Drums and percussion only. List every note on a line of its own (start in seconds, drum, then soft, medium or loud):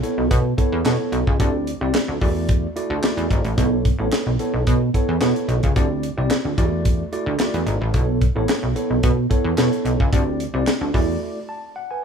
0.03 closed hi-hat medium
0.31 kick loud
0.31 closed hi-hat medium
0.58 kick medium
0.58 closed hi-hat medium
0.85 snare loud
0.85 clap medium
0.85 closed hi-hat medium
1.13 closed hi-hat medium
1.27 kick medium
1.40 kick loud
1.40 closed hi-hat medium
1.67 closed hi-hat medium
1.95 snare loud
1.95 clap loud
1.95 closed hi-hat medium
2.21 kick medium
2.21 open hi-hat medium
2.49 kick loud
2.49 closed hi-hat loud
2.77 closed hi-hat medium
3.03 snare loud
3.03 clap medium
3.03 closed hi-hat medium
3.18 closed hi-hat soft
3.31 kick medium
3.31 closed hi-hat medium
3.45 closed hi-hat soft
3.58 kick loud
3.58 closed hi-hat medium
3.85 kick loud
3.85 closed hi-hat medium
4.12 snare loud
4.12 clap loud
4.12 closed hi-hat medium
4.39 closed hi-hat medium
4.67 kick loud
4.67 closed hi-hat medium
4.94 kick medium
4.94 closed hi-hat medium
5.21 snare loud
5.21 clap medium
5.21 closed hi-hat loud
5.36 closed hi-hat soft
5.49 closed hi-hat medium
5.63 kick medium
5.63 closed hi-hat medium
5.76 kick loud
5.76 closed hi-hat medium
6.03 closed hi-hat medium
6.31 snare loud
6.31 clap loud
6.31 closed hi-hat medium
6.58 kick medium
6.58 closed hi-hat medium
6.85 kick loud
6.85 closed hi-hat medium
7.13 closed hi-hat medium
7.39 snare loud
7.39 clap medium
7.39 closed hi-hat loud
7.54 closed hi-hat soft
7.67 closed hi-hat medium
7.94 kick loud
7.94 closed hi-hat medium
8.21 kick loud
8.21 closed hi-hat medium
8.49 snare loud
8.49 clap medium
8.49 closed hi-hat medium
8.76 closed hi-hat medium
9.03 kick loud
9.03 closed hi-hat medium
9.31 kick medium
9.31 closed hi-hat medium
9.58 snare loud
9.58 clap medium
9.58 closed hi-hat loud
9.73 closed hi-hat soft
9.85 closed hi-hat medium
10.00 kick medium
10.13 kick loud
10.13 closed hi-hat medium
10.40 closed hi-hat medium
10.67 snare loud
10.67 clap loud
10.67 closed hi-hat medium
10.94 kick medium
10.94 open hi-hat medium